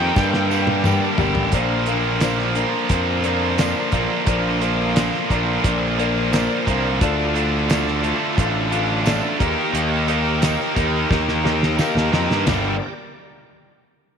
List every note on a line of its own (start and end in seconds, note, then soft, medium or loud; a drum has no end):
0.00 0.15 D#3 medium
0.00 0.15 A#3 medium
0.00 0.15 D#4 medium
0.00 0.15 G4 medium
0.00 0.15 G4 loud
0.00 0.15 A#4 medium
0.00 0.14 D#5 medium
0.00 0.10 G5 loud
0.00 0.82 G5 loud
0.15 0.50 G2 loud
0.15 0.99 G2 loud
0.15 0.50 D3 loud
0.15 0.50 G3 loud
0.15 0.51 A#3 loud
0.15 0.51 D4 loud
0.15 0.43 G4 loud
0.15 0.52 G4 loud
0.15 1.53 G4 medium
0.15 0.43 A#4 medium
0.15 1.53 A#4 medium
0.15 0.44 D5 medium
0.15 1.52 D5 medium
0.15 0.44 G5 loud
0.15 kick loud
0.15 snare medium
0.15 tambourine medium
0.34 snare medium
0.49 0.84 G2 medium
0.49 0.85 D3 medium
0.49 0.85 G3 medium
0.49 0.85 A#3 loud
0.49 0.86 D4 loud
0.49 0.77 G4 medium
0.49 0.78 A#4 medium
0.49 0.78 D5 medium
0.49 tambourine medium
0.53 0.86 G4 medium
0.67 high tom medium
0.84 1.18 G2 loud
0.84 1.18 D3 loud
0.84 1.19 G3 loud
0.84 1.19 A#3 loud
0.84 1.19 D4 loud
0.84 1.12 G4 medium
0.84 1.20 G4 loud
0.84 1.12 A#4 medium
0.84 1.12 D5 medium
0.84 1.13 G5 loud
0.84 mid tom medium
0.84 tambourine loud
1.18 1.34 G1 medium
1.18 1.51 G2 medium
1.18 1.52 D3 loud
1.18 1.52 G3 medium
1.18 1.52 A#3 loud
1.18 1.52 D4 loud
1.18 1.46 G4 medium
1.18 1.52 G4 loud
1.18 1.46 A#4 medium
1.18 1.46 D5 medium
1.18 1.47 G5 loud
1.18 floor tom loud
1.18 tambourine soft
1.35 1.52 A1 medium
1.35 floor tom medium
1.51 2.63 A#1 medium
1.51 1.87 A#2 medium
1.51 1.87 D3 medium
1.51 1.88 F3 medium
1.51 1.88 A#3 medium
1.51 1.89 D4 loud
1.51 1.89 F4 loud
1.51 1.80 A#4 loud
1.51 4.25 A#4 medium
1.51 1.80 C5 loud
1.51 4.24 C5 medium
1.51 1.81 D5 loud
1.51 4.24 D5 medium
1.51 kick loud
1.51 closed hi-hat medium
1.85 2.21 A#2 medium
1.85 2.21 D3 medium
1.85 2.22 F3 medium
1.85 2.22 A#3 medium
1.85 2.22 D4 medium
1.85 2.22 F4 medium
1.85 2.14 A#4 medium
1.85 2.14 C5 medium
1.85 2.15 F5 loud
1.85 closed hi-hat medium
2.20 2.55 A#2 medium
2.20 2.55 D3 medium
2.20 2.56 F3 medium
2.20 2.56 A#3 medium
2.20 2.56 D4 medium
2.20 2.57 F4 medium
2.20 2.48 A#4 medium
2.20 2.49 C5 medium
2.20 2.49 D5 medium
2.20 snare loud
2.20 closed hi-hat medium
2.20 tambourine medium
2.39 snare soft
2.54 2.88 A#2 medium
2.54 2.88 D3 medium
2.54 2.90 F3 medium
2.54 2.89 A#3 medium
2.54 2.90 D4 medium
2.54 2.90 F4 medium
2.54 2.83 A#4 medium
2.54 2.83 C5 medium
2.54 2.83 D5 medium
2.54 closed hi-hat medium
2.88 3.73 F2 medium
2.88 3.23 A#2 medium
2.88 3.23 D3 medium
2.88 3.25 F3 medium
2.88 3.24 A#3 loud
2.88 3.25 D4 medium
2.88 3.25 F4 loud
2.88 3.17 A#4 medium
2.88 3.17 C5 medium
2.88 3.17 F5 medium
2.88 kick loud
2.88 closed hi-hat medium
3.22 3.58 A#2 medium
3.22 3.58 D3 medium
3.22 3.59 F3 medium
3.22 3.59 A#3 medium
3.22 3.60 D4 medium
3.22 3.60 F4 medium
3.22 3.51 A#4 loud
3.22 3.51 C5 loud
3.22 3.51 D5 loud
3.22 closed hi-hat medium
3.56 3.91 A#2 medium
3.56 3.92 D3 medium
3.56 3.92 F3 medium
3.56 3.92 A#3 medium
3.56 3.93 D4 medium
3.56 3.85 A#4 loud
3.56 3.85 C5 loud
3.56 3.86 D5 loud
3.56 snare loud
3.56 closed hi-hat medium
3.56 tambourine medium
3.61 3.93 F4 loud
3.90 4.07 A#1 medium
3.90 4.25 A#2 medium
3.90 4.26 D3 medium
3.90 4.26 F3 medium
3.90 4.26 A#3 medium
3.90 4.28 D4 medium
3.90 4.28 F4 medium
3.90 4.19 A#4 medium
3.90 4.19 C5 medium
3.90 4.20 D5 medium
3.90 kick medium
3.90 closed hi-hat medium
4.25 5.10 A#1 medium
4.25 4.59 A#2 loud
4.25 4.60 D3 medium
4.25 4.61 F3 medium
4.25 4.60 A#3 loud
4.25 6.98 D4 medium
4.25 4.62 D4 loud
4.25 4.62 F4 loud
4.25 4.54 A#4 loud
4.25 6.98 A#4 medium
4.25 4.54 C5 loud
4.25 6.98 C5 medium
4.25 4.54 D5 loud
4.25 kick loud
4.25 closed hi-hat medium
4.59 4.94 A#2 medium
4.59 4.94 D3 medium
4.59 4.95 F3 medium
4.59 4.95 A#3 medium
4.59 4.96 D4 medium
4.59 4.96 F4 loud
4.59 4.88 A#4 medium
4.59 4.88 C5 medium
4.59 4.89 D5 loud
4.59 closed hi-hat medium
4.93 5.28 A#2 medium
4.93 5.29 D3 medium
4.93 5.29 F3 medium
4.93 5.29 A#3 medium
4.93 5.30 D4 medium
4.93 5.30 F4 medium
4.93 5.22 A#4 medium
4.93 5.22 C5 medium
4.93 5.22 D5 loud
4.93 snare loud
4.93 closed hi-hat medium
4.93 tambourine medium
5.14 snare soft
5.28 5.58 A#1 medium
5.28 5.62 A#2 medium
5.28 5.63 D3 medium
5.28 5.62 F3 medium
5.28 5.63 A#3 medium
5.28 5.64 D4 medium
5.28 5.64 F4 loud
5.28 5.56 A#4 medium
5.28 5.57 C5 medium
5.28 5.58 D5 medium
5.28 kick medium
5.28 closed hi-hat medium
5.63 6.47 A#1 loud
5.63 5.97 A#2 loud
5.63 5.97 D3 loud
5.63 5.97 F3 medium
5.63 5.98 A#3 loud
5.63 5.98 D4 loud
5.63 5.98 F4 loud
5.63 5.91 A#4 medium
5.63 5.91 C5 medium
5.63 5.92 D5 medium
5.63 kick loud
5.63 closed hi-hat loud
5.98 6.30 A#2 medium
5.98 6.31 D3 medium
5.98 6.32 F3 medium
5.98 6.31 A#3 medium
5.98 6.32 D4 loud
5.98 6.32 F4 medium
5.98 6.25 A#4 loud
5.98 6.26 C5 loud
5.98 6.26 D5 loud
5.98 closed hi-hat medium
6.32 6.65 A#2 medium
6.32 6.65 D3 medium
6.32 6.66 F3 medium
6.32 6.66 A#3 loud
6.32 6.66 D4 medium
6.32 6.67 F4 medium
6.32 6.59 A#4 loud
6.32 6.60 C5 loud
6.32 6.60 D5 loud
6.32 snare loud
6.32 closed hi-hat medium
6.32 tambourine loud
6.66 7.02 C2 loud
6.66 6.98 A#2 medium
6.66 6.99 D3 medium
6.66 6.99 F3 medium
6.66 6.99 A#3 medium
6.66 6.99 D4 medium
6.66 6.99 F4 medium
6.66 6.94 A#4 medium
6.66 6.94 C5 medium
6.66 6.95 D5 medium
6.66 kick medium
6.66 closed hi-hat medium
7.01 8.11 D2 medium
7.01 7.33 D3 medium
7.01 7.34 A3 loud
7.01 7.34 D4 loud
7.01 7.28 F4 loud
7.01 9.38 F4 medium
7.01 7.35 F4 loud
7.01 7.28 A4 loud
7.01 9.38 A4 medium
7.01 9.38 D5 medium
7.01 7.29 D5 loud
7.01 kick loud
7.01 closed hi-hat loud
7.34 7.68 D3 medium
7.34 7.69 A3 medium
7.34 7.69 D4 medium
7.34 7.62 F4 medium
7.34 7.70 F4 loud
7.34 7.62 A4 medium
7.34 7.63 D5 medium
7.34 closed hi-hat medium
7.70 8.02 D3 medium
7.70 8.02 A3 medium
7.70 8.03 D4 medium
7.70 7.97 F4 medium
7.70 8.03 F4 loud
7.70 7.97 A4 medium
7.70 7.97 D5 loud
7.70 snare loud
7.70 closed hi-hat medium
7.70 tambourine loud
7.88 snare soft
8.02 8.36 D3 medium
8.02 8.36 A3 medium
8.02 8.37 D4 medium
8.02 8.30 F4 medium
8.02 8.37 F4 medium
8.02 8.31 A4 medium
8.02 8.31 D5 loud
8.02 closed hi-hat medium
8.37 9.20 A1 medium
8.37 8.70 D3 loud
8.37 8.70 A3 loud
8.37 8.71 D4 loud
8.37 8.65 F4 medium
8.37 8.71 F4 loud
8.37 8.65 A4 medium
8.37 8.65 F5 medium
8.37 kick loud
8.37 closed hi-hat medium
8.71 9.04 D3 medium
8.71 9.05 A3 medium
8.71 9.05 D4 medium
8.71 8.99 F4 loud
8.71 9.05 F4 medium
8.71 8.99 A4 loud
8.71 9.00 F5 loud
8.71 closed hi-hat medium
9.05 9.37 D3 medium
9.05 9.38 A3 medium
9.05 9.38 D4 loud
9.05 9.33 F4 loud
9.05 9.38 F4 medium
9.05 9.33 A4 medium
9.05 9.34 D5 loud
9.05 snare loud
9.05 closed hi-hat medium
9.05 tambourine loud
9.38 9.54 D#2 medium
9.38 9.73 D#3 medium
9.38 9.73 A#3 loud
9.38 9.73 D#4 medium
9.38 9.94 G4 medium
9.38 9.74 G4 loud
9.38 9.62 G#4 medium
9.38 9.94 A#4 medium
9.38 9.63 B4 medium
9.38 9.95 D#5 loud
9.38 9.62 E5 medium
9.38 kick loud
9.38 closed hi-hat medium
9.62 12.44 G4 medium
9.62 12.44 A#4 medium
9.62 12.44 D#5 medium
9.73 10.56 D#2 medium
9.73 10.07 D#3 loud
9.73 10.08 A#3 loud
9.73 10.08 D#4 loud
9.73 10.08 G4 loud
9.73 closed hi-hat medium
10.07 10.41 D#3 medium
10.07 10.42 A#3 medium
10.07 10.42 D#4 medium
10.07 10.35 G4 medium
10.07 10.42 G4 medium
10.07 10.35 A#4 medium
10.07 10.36 D#5 loud
10.07 closed hi-hat medium
10.41 10.75 D#3 medium
10.41 10.75 A#3 medium
10.41 10.75 D#4 loud
10.41 10.69 G4 medium
10.41 10.76 G4 medium
10.41 10.69 A#4 medium
10.41 10.70 D#5 loud
10.41 snare loud
10.41 closed hi-hat loud
10.41 tambourine loud
10.61 snare soft
10.76 11.04 D#2 medium
10.76 11.09 D#3 medium
10.76 11.09 A#3 medium
10.76 11.09 D#4 medium
10.76 11.03 G4 medium
10.76 11.09 G4 medium
10.76 11.04 A#4 medium
10.76 11.04 D#5 loud
10.76 kick medium
10.76 closed hi-hat medium
11.09 11.79 D#2 medium
11.09 11.42 D#3 loud
11.09 11.43 A#3 loud
11.09 11.43 D#4 loud
11.09 11.37 G4 medium
11.09 11.44 G4 loud
11.09 11.38 A#4 medium
11.09 11.38 D#5 medium
11.09 kick loud
11.09 snare medium
11.29 snare medium
11.43 11.77 D#3 medium
11.43 11.77 A#3 medium
11.43 11.78 D#4 medium
11.43 11.71 G4 loud
11.43 11.78 G4 loud
11.43 11.72 A#4 loud
11.43 11.72 D#5 loud
11.43 11.76 F5 medium
11.43 snare medium
11.63 snare medium
11.78 12.11 D#3 medium
11.78 12.12 A#3 loud
11.78 12.12 D#4 loud
11.78 12.05 G4 loud
11.78 12.13 G4 loud
11.78 12.06 A#4 loud
11.78 12.06 F5 loud
11.78 11.94 G5 medium
11.78 snare medium
11.78 tambourine loud
11.95 12.11 D#2 medium
11.95 12.11 A5 medium
11.95 snare medium
12.12 12.28 F2 medium
12.12 12.44 D#3 medium
12.12 12.45 A#3 medium
12.12 12.45 D#4 medium
12.12 12.39 G4 medium
12.12 12.45 G4 medium
12.12 12.40 A#4 medium
12.12 12.40 D#5 loud
12.12 12.44 A#5 medium
12.12 snare loud
12.30 12.45 G2 medium
12.30 snare medium
12.47 12.79 G1 medium
12.47 12.74 G2 loud
12.47 12.74 D3 medium
12.47 12.75 G3 loud
12.47 12.75 A#3 medium
12.47 12.75 D4 loud
12.47 12.78 G4 medium
12.47 12.94 G4 medium
12.47 12.75 G4 loud
12.47 12.78 A#4 medium
12.47 12.94 A#4 medium
12.47 12.94 D5 medium
12.47 12.78 D5 medium
12.47 snare loud
12.47 floor tom loud
12.47 ride bell medium
12.47 tambourine medium